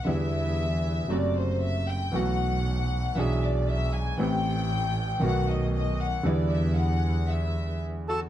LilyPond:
<<
  \new Staff \with { instrumentName = "Violin section" } { \time 4/4 \key e \minor \tempo 4 = 116 e''2 d''8 c''8 e''8 g''8 | fis''2 e''8 d''8 e''8 gis''8 | g''2 fis''8 dis''8 dis''8 fis''8 | d''8 e''8 fis''4 e''4 r8 fis'8 | }
  \new Staff \with { instrumentName = "Bandoneon" } { \time 4/4 \key e \minor r1 | r1 | r1 | r2. r8 <a' a''>8 | }
  \new Staff \with { instrumentName = "Grand piano" } { \clef bass \time 4/4 \key e \minor <e, d e g b e'>2 <fis, c fis a fis'>2 | <b,, b, e a b fis'>2 <b,, b, e b d' gis'>2 | <a,, a, e a c' g'>2 <b,, b, dis a b fis'>2 | <e, d e g b e'>1 | }
  \new Staff \with { instrumentName = "Double bass" } { \clef bass \time 4/4 \key e \minor e,2 fis,,2 | b,,2 b,,2 | a,,2 b,,2 | e,1 | }
>>